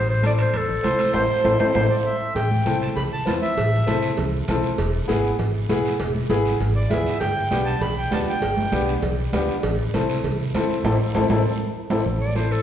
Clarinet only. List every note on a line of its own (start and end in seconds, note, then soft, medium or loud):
0.10 0.23 C5 loud
0.26 0.32 D5 medium
0.42 0.58 C5 medium
0.57 1.15 A4 medium
1.15 1.22 C5 medium
1.45 1.53 C5 medium
1.60 1.67 C5 medium
1.76 1.83 C5 medium
12.21 12.37 D5 medium
12.36 12.53 C5 medium
12.52 12.62 A4 medium